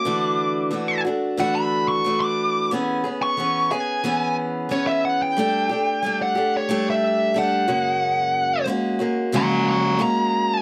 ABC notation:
X:1
M:4/4
L:1/16
Q:1/4=90
K:F#mix
V:1 name="Lead electric guitar"
=d'6 z2 f b2 c'2 d'3 | z3 c'3 g4 z2 c e f =g- | =g4- g f2 c2 e3 f4- | f4 z4 [ac']2 [ac']2 a4 |]
V:2 name="Steel-string acoustic guitar"
[=D,E,=A,=DF]4 [E,A,DF]2 [A,DF]2 [D,E,A,DF]4 [E,A,DF]4 | [E,B,CG]2 [B,CG]2 [E,B,CG]2 [B,CG]2 [E,B,CG]4 [E,B,CG]4 | [=G,=A,=D=G]2 [A,DG]2 [G,A,DG]2 [A,DG]2 [G,A,DG]4 [G,A,DG]2 [F,,C,^G,^A,CF]2- | [F,,C,G,A,CF]4 [G,A,CF]2 [G,A,CF]2 [F,,C,G,A,CF]4 [G,A,CF]4 |]